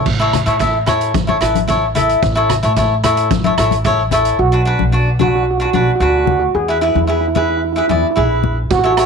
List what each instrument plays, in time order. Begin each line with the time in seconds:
0.06 upright bass A1, kick, crash
0.19 cavaquinho E4 A4 C#5
0.33 cross-stick, closed hi-hat, low conga
0.46 upright bass A2, cavaquinho E4 A4 C#5, closed hi-hat
0.59 cavaquinho E4 A4 E5, kick, closed hi-hat
0.86 cavaquinho E4 A4 C#5, cross-stick, closed hi-hat, low conga
1.01 closed hi-hat
1.14 kick, closed hi-hat, high conga
1.27 cavaquinho E4 A4 C#5, high conga
1.41 upright bass A1, cavaquinho E4 A4 B4, cross-stick, closed hi-hat
1.55 closed hi-hat, high conga
1.68 cavaquinho E4 A4 C#5, kick, closed hi-hat
1.95 cavaquinho E4 A4 E5, closed hi-hat, low conga
2.09 closed hi-hat
2.23 upright bass A1, kick, closed hi-hat
2.35 cavaquinho E4 A4 C#5
2.50 cross-stick, closed hi-hat, low conga
2.63 upright bass A2, cavaquinho E4 A4 C#5, closed hi-hat
2.76 cavaquinho E4 A4 C#5, kick, closed hi-hat
3.04 cavaquinho E4 A4 C#5, cross-stick, closed hi-hat, low conga
3.17 closed hi-hat
3.31 kick, closed hi-hat, high conga
3.44 cavaquinho E4 A4 C#5, high conga
3.58 upright bass A1, cavaquinho E4 A4 C#5, cross-stick, closed hi-hat
3.71 closed hi-hat, high conga
3.84 cavaquinho E4 A4 C#5, kick, closed hi-hat
4.11 cavaquinho E4 A4 C#5, closed hi-hat, low conga
4.25 closed hi-hat
4.39 upright bass B1, steel pan F#4
4.52 cavaquinho D4 F#4 B4
4.65 cavaquinho D4 F#4 B4
4.79 upright bass B1, high conga
4.92 cavaquinho D4 F#4 D5
5.19 cavaquinho D4 F#4 B4, steel pan F#4, high conga, low conga
5.28 steel pan F#4
5.36 steel pan F#4
5.43 steel pan F#4
5.51 steel pan F#4
5.58 cavaquinho D4 F#4 B4, steel pan F#4
5.65 steel pan F#4
5.73 upright bass B1, cavaquinho D4 F#4 B4, steel pan F#4, high conga
5.81 steel pan F#4
5.87 steel pan F#4
5.96 steel pan F#4
6.00 upright bass D2, cavaquinho D4 F#4 B4, steel pan F#4
6.10 steel pan F#4
6.18 steel pan F#4
6.26 steel pan F#4, high conga, low conga
6.32 steel pan F#4
6.40 steel pan F#4
6.54 upright bass E2, steel pan G#4
6.68 cavaquinho E4 G#4 B4
6.81 cavaquinho E4 G#4 B4, steel pan E4
6.89 steel pan E4
6.95 upright bass E2, steel pan E4, high conga
7.05 steel pan E4, cavaquinho E4 G#4
7.09 steel pan E4, cavaquinho B4
7.21 steel pan E4
7.28 steel pan E4
7.35 cavaquinho E4 G#4 B4, steel pan E4, high conga, low conga
7.42 steel pan E4
7.50 steel pan E4
7.57 steel pan E4
7.65 steel pan E4
7.73 steel pan E4, cavaquinho E4
7.77 steel pan E4, cavaquinho G#4 B4
7.88 upright bass E2, steel pan E4, cavaquinho E4 G#4 D5, high conga
7.96 steel pan E4
8.02 steel pan E4
8.11 steel pan E4
8.16 upright bass A#1, cavaquinho E4 G#4 B4, steel pan E4
8.25 steel pan E4
8.44 high conga, low conga
8.70 upright bass A1, steel pan F#4, kick, closed hi-hat
8.79 steel pan F#4
8.84 cavaquinho E4 A4 C#5, steel pan F#4
8.93 steel pan F#4
8.97 cavaquinho E4 A4 C#5, steel pan F#4, cross-stick, closed hi-hat